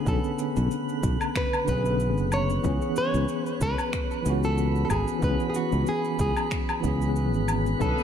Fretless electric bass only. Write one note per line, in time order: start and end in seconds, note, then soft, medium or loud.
0.06 0.18 B1 medium
0.57 0.66 B1 medium
1.03 1.15 B1 medium
1.68 2.18 B1 loud
2.18 2.57 F#1 medium
2.64 2.77 C#2 loud
3.14 3.24 C#2 medium
3.61 3.73 C#2 medium
4.26 4.83 C#2 medium
4.90 5.02 G#1 medium
5.22 5.35 C#2 loud
5.72 5.82 C#2 medium
6.19 6.31 C#2 medium
6.84 7.34 C#2 loud
7.34 7.73 G#1 loud
7.81 7.93 B1 loud